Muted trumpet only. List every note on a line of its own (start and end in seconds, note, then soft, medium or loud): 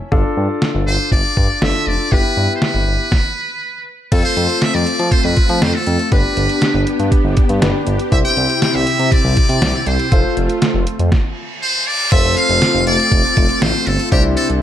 0.87 1.10 C5 medium
1.12 1.64 D5 loud
1.62 1.89 E5 loud
1.87 2.14 D5 loud
2.12 2.55 B4 medium
2.55 2.64 C5 medium
2.62 3.87 B4 medium
4.12 4.24 A4 medium
4.25 4.64 C5 loud
4.62 4.76 E5 loud
4.75 5.13 D5 loud
5.12 5.26 C5 loud
5.24 5.64 B4 loud
5.62 5.76 C5 medium
5.75 6.11 A4 medium
6.12 6.83 B4 medium
8.12 8.18 E5 loud
8.25 8.59 G5 loud
8.62 8.76 G5 loud
8.75 9.14 E5 loud
9.12 9.88 D5 loud
9.87 10.37 C5 medium
11.62 11.88 C5 loud
11.87 12.11 D5 loud
12.12 12.35 E5 loud
12.37 12.83 F5 loud
12.87 13.63 D5 loud
13.62 13.88 C5 loud
13.87 14.11 A4 medium
14.11 14.23 G4 medium
14.37 14.48 A4 medium